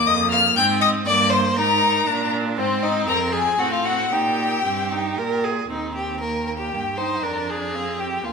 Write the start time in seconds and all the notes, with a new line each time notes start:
Already playing: A#3
0.06 F2 D#5 D#6
0.31 F5 F6
0.56 G#2 C4 G5 G6
0.81 D#5 D#6
1.06 G2 A#3 D5 D6
1.30 C5 C6
1.56 G#2 D#4 A#4 A#5
2.07 A#2 D4
2.57 G#2 C4 C5
2.83 D#4 D#5
3.07 F2 A#4 A#5
3.32 G#4 G#5
3.58 A2 C4 F#4 F#5
3.72 F4 F5
3.85 F#4 F#5
4.11 A#2 D#4 G4 G5
4.65 G2 C4
4.91 D#4
5.18 A#2 A#4
5.44 G#4
5.70 D#2 C4 D#4
5.95 G4
6.20 A#3 A#4 G5
6.47 A#4
6.58 G4
6.72 G2 A#3
6.97 D#4 C5
7.23 F2 D4 A#4 D5
7.50 G#4
7.74 C4 F5
7.99 G4 G5
8.24 D2 A#3 F4 G#5